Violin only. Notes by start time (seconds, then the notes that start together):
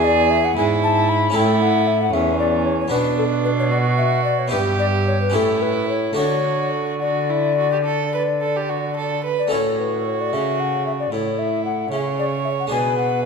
Already playing: G#4
0.56 E4
1.35 E4
2.12 C#4
2.92 D4
3.71 F#4
4.51 G4
5.33 E4
6.16 F#4
7.02 F#4
7.30 E4
7.58 F#4
7.72 G4
7.85 A4
8.14 B4
8.41 A4
8.56 G4
8.69 F#4
8.97 A4
9.24 B4
9.52 F#4
11.12 E4
11.91 C#5
12.71 B4